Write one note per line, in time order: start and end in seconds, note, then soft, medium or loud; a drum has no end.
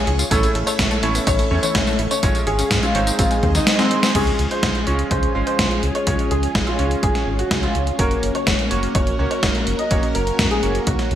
0.00 0.28 G#3 medium
0.00 0.28 C#4 medium
0.00 0.28 F4 medium
0.00 0.21 G#4 loud
0.00 0.29 G#4 medium
0.00 0.28 C#5 medium
0.00 3.15 C#5 medium
0.00 0.29 F5 medium
0.00 0.27 C#6 medium
0.07 0.24 C#2 medium
0.07 0.11 G#4 medium
0.07 closed hi-hat medium
0.19 0.26 F4 medium
0.19 closed hi-hat soft
0.19 tambourine medium
0.31 0.48 A1 loud
0.31 1.00 A3 medium
0.31 0.35 A3 medium
0.31 1.00 C#4 medium
0.31 1.00 E4 medium
0.31 0.57 A4 loud
0.31 2.21 A4 medium
0.31 1.00 C#5 loud
0.31 2.21 E5 medium
0.31 3.16 C#6 medium
0.31 kick loud
0.31 closed hi-hat medium
0.31 tambourine medium
0.43 0.50 A3 medium
0.43 closed hi-hat soft
0.43 tambourine soft
0.55 0.64 A1 loud
0.55 0.62 A4 medium
0.55 closed hi-hat medium
0.67 0.74 A3 loud
0.67 0.93 C#5 medium
0.67 closed hi-hat soft
0.67 tambourine medium
0.79 0.88 A1 loud
0.79 0.90 C#4 medium
0.79 kick loud
0.79 snare loud
0.79 closed hi-hat medium
0.79 tambourine medium
0.91 0.95 A3 loud
0.91 closed hi-hat soft
0.91 tambourine soft
1.03 1.20 A1 medium
1.03 1.48 A3 loud
1.03 1.48 C#4 medium
1.03 1.48 E4 medium
1.03 1.14 A4 medium
1.03 1.48 C#5 loud
1.03 closed hi-hat medium
1.15 1.22 B3 medium
1.15 closed hi-hat soft
1.15 tambourine medium
1.27 1.44 A1 loud
1.27 1.31 D#4 medium
1.27 1.53 C#5 medium
1.27 kick loud
1.27 closed hi-hat medium
1.27 tambourine medium
1.39 1.46 A3 medium
1.39 closed hi-hat soft
1.39 tambourine soft
1.51 1.60 E2 medium
1.51 2.20 A3 medium
1.51 2.20 C#4 medium
1.51 1.58 C#4 medium
1.51 2.20 E4 medium
1.51 2.20 C#5 loud
1.63 1.74 E3 loud
1.63 1.98 C#5 medium
1.63 closed hi-hat soft
1.63 tambourine medium
1.75 1.84 A1 medium
1.75 1.86 C#4 medium
1.75 kick loud
1.75 snare loud
1.75 closed hi-hat medium
1.75 tambourine medium
1.87 1.91 A3 loud
1.87 closed hi-hat soft
1.87 tambourine soft
1.99 2.07 A1 medium
1.99 2.03 E4 medium
1.99 closed hi-hat medium
2.11 2.18 C#4 medium
2.11 2.37 C#5 medium
2.11 closed hi-hat soft
2.11 tambourine medium
2.23 2.32 G#1 medium
2.23 2.92 G#3 medium
2.23 2.92 C#4 medium
2.23 2.27 C#4 medium
2.23 2.92 F4 medium
2.23 4.13 G#4 medium
2.23 2.92 C#5 loud
2.23 3.18 F5 medium
2.23 kick loud
2.23 closed hi-hat medium
2.23 tambourine medium
2.35 2.42 C#4 medium
2.35 closed hi-hat soft
2.35 tambourine soft
2.47 2.64 G#1 medium
2.47 2.73 G#4 loud
2.47 2.54 C#5 medium
2.47 closed hi-hat medium
2.59 2.66 C#4 loud
2.59 closed hi-hat soft
2.59 tambourine medium
2.71 2.80 G#2 loud
2.71 2.82 F4 medium
2.71 kick loud
2.71 snare loud
2.71 closed hi-hat medium
2.71 tambourine medium
2.83 2.87 C#4 loud
2.83 3.09 F4 loud
2.83 closed hi-hat soft
2.83 tambourine soft
2.95 3.12 G#1 medium
2.95 3.77 G#3 medium
2.95 3.77 C4 medium
2.95 3.77 D#4 medium
2.95 3.77 C5 medium
2.95 3.06 C#5 medium
2.95 closed hi-hat medium
3.07 3.14 D#4 medium
3.07 closed hi-hat soft
3.07 tambourine medium
3.19 3.27 G#1 medium
3.19 3.23 C4 medium
3.19 3.45 F4 medium
3.19 4.14 C5 medium
3.19 4.14 D#5 medium
3.19 4.14 C6 medium
3.19 kick loud
3.19 closed hi-hat loud
3.19 tambourine medium
3.31 3.38 G#3 medium
3.31 closed hi-hat soft
3.31 tambourine soft
3.43 3.60 D#2 loud
3.43 3.50 C4 medium
3.43 kick medium
3.43 closed hi-hat soft
3.55 3.66 D#3 loud
3.55 3.72 D#4 medium
3.55 snare soft
3.55 closed hi-hat soft
3.55 tambourine medium
3.67 3.78 C4 medium
3.67 snare loud
3.67 closed hi-hat medium
3.67 tambourine medium
3.79 4.12 G#3 medium
3.79 3.83 G#3 loud
3.79 4.12 C4 medium
3.79 4.05 C4 loud
3.79 4.12 D#4 medium
3.79 4.12 C5 medium
3.79 snare medium
3.79 closed hi-hat soft
3.79 tambourine soft
3.91 3.95 D#4 medium
3.91 closed hi-hat medium
4.03 4.10 C4 medium
4.03 snare loud
4.03 closed hi-hat soft
4.03 tambourine medium
4.15 4.32 C#2 loud
4.15 4.84 G#3 medium
4.15 4.84 C#4 medium
4.15 11.15 C#4 medium
4.15 4.84 F4 medium
4.15 7.95 F4 medium
4.15 7.95 G#4 medium
4.15 4.41 G#4 medium
4.15 4.84 C#5 medium
4.15 kick loud
4.15 closed hi-hat medium
4.15 crash medium
4.27 closed hi-hat soft
4.39 4.47 C#2 medium
4.39 closed hi-hat medium
4.51 4.77 C5 medium
4.51 closed hi-hat soft
4.63 4.71 C#2 loud
4.63 kick loud
4.63 snare loud
4.63 closed hi-hat medium
4.75 closed hi-hat soft
4.87 5.04 C#2 medium
4.87 5.32 G#3 medium
4.87 5.32 C#4 medium
4.87 5.32 F4 medium
4.87 5.32 C#5 loud
4.87 closed hi-hat medium
4.99 closed hi-hat soft
5.11 5.28 C#2 medium
5.11 5.37 C5 medium
5.11 kick loud
5.11 closed hi-hat medium
5.23 closed hi-hat soft
5.35 5.44 G#1 medium
5.35 6.04 G#3 medium
5.35 6.04 C#4 medium
5.35 6.04 F4 medium
5.35 6.04 F5 medium
5.47 5.82 C5 medium
5.47 closed hi-hat soft
5.59 5.68 C#2 medium
5.59 kick loud
5.59 snare loud
5.59 closed hi-hat medium
5.71 closed hi-hat soft
5.83 5.92 C#2 medium
5.83 closed hi-hat medium
5.95 6.21 C#5 medium
5.95 closed hi-hat soft
6.07 6.16 C#2 medium
6.07 6.76 G#3 medium
6.07 6.76 C#4 medium
6.07 6.76 F4 medium
6.07 6.76 C#5 medium
6.07 kick loud
6.07 closed hi-hat medium
6.19 closed hi-hat soft
6.31 6.48 C#2 medium
6.31 6.57 G#4 medium
6.31 closed hi-hat medium
6.43 closed hi-hat soft
6.55 6.64 G#1 loud
6.55 kick loud
6.55 snare loud
6.55 closed hi-hat medium
6.67 6.93 F4 medium
6.67 closed hi-hat soft
6.79 6.96 C#2 medium
6.79 7.96 G#3 medium
6.79 7.96 C#4 medium
6.79 7.96 F4 medium
6.79 7.96 C#5 medium
6.79 closed hi-hat medium
6.91 closed hi-hat soft
7.03 7.11 G#1 medium
7.03 7.29 G#4 medium
7.03 kick loud
7.03 closed hi-hat medium
7.15 snare soft
7.15 closed hi-hat soft
7.27 7.44 G#1 loud
7.39 7.56 F#4 medium
7.39 closed hi-hat soft
7.51 7.68 C#2 medium
7.51 kick loud
7.51 snare loud
7.51 closed hi-hat medium
7.63 7.89 F4 loud
7.63 closed hi-hat soft
7.75 7.92 C#2 medium
7.75 closed hi-hat medium
7.87 closed hi-hat soft
7.99 8.16 F#1 loud
7.99 8.68 A#3 medium
7.99 8.68 C#4 medium
7.99 8.68 F#4 medium
7.99 11.15 F#4 medium
7.99 8.25 A#4 loud
7.99 11.15 A#4 medium
7.99 8.68 C#5 loud
7.99 kick loud
7.99 closed hi-hat medium
8.11 closed hi-hat soft
8.23 8.31 F#1 medium
8.23 closed hi-hat medium
8.35 8.61 C#5 medium
8.35 closed hi-hat soft
8.47 8.55 F#1 loud
8.47 kick loud
8.47 snare loud
8.47 closed hi-hat medium
8.59 closed hi-hat soft
8.71 8.88 F#1 medium
8.71 9.16 A#3 medium
8.71 9.16 C#4 medium
8.71 9.16 F#4 medium
8.71 9.16 C#5 loud
8.71 closed hi-hat medium
8.83 closed hi-hat soft
8.95 9.12 F#1 medium
8.95 9.21 C#5 medium
8.95 kick loud
8.95 closed hi-hat medium
9.07 closed hi-hat soft
9.19 9.28 C#2 medium
9.19 9.88 A#3 medium
9.19 9.88 C#4 medium
9.19 9.88 F#4 medium
9.19 9.88 C#5 medium
9.31 9.66 C#5 medium
9.31 closed hi-hat soft
9.43 9.52 F#1 medium
9.43 kick loud
9.43 snare loud
9.43 closed hi-hat medium
9.55 closed hi-hat soft
9.67 9.76 F#1 medium
9.67 closed hi-hat medium
9.79 10.05 D#5 medium
9.79 closed hi-hat soft
9.91 10.00 F#1 medium
9.91 10.60 A#3 medium
9.91 10.60 C#4 medium
9.91 10.60 F#4 medium
9.91 10.60 C#5 medium
9.91 kick loud
9.91 closed hi-hat medium
10.03 closed hi-hat soft
10.15 10.32 F#1 medium
10.15 10.41 A#4 medium
10.15 closed hi-hat medium
10.27 closed hi-hat soft
10.39 10.48 F#2 medium
10.39 kick loud
10.39 snare loud
10.39 closed hi-hat medium
10.51 10.77 G#4 medium
10.51 closed hi-hat soft
10.63 10.80 F#1 medium
10.63 11.15 A#3 medium
10.63 11.15 C#4 medium
10.63 11.15 F#4 medium
10.63 11.15 C#5 medium
10.63 closed hi-hat medium
10.75 closed hi-hat soft
10.87 10.96 C#2 medium
10.87 11.13 F#4 medium
10.87 kick loud
10.87 closed hi-hat medium
10.99 snare soft
10.99 closed hi-hat soft
11.11 11.15 C#2 loud
11.11 closed hi-hat soft